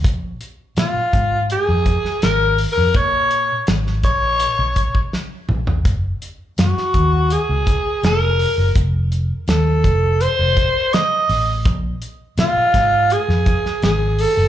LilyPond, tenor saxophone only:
\new Staff \with { instrumentName = "Tenor saxophone" } { \time 4/4 \key bes \minor \tempo 4 = 83 r4 f'4 aes'4 \tuplet 3/2 { bes'8. r16 bes'8 } | des''4 r8 des''4. r4 | r4 ges'4 aes'4 bes'4 | r4 a'4 c''4 ees''4 |
r4 f'4 aes'4 aes'8 a'8 | }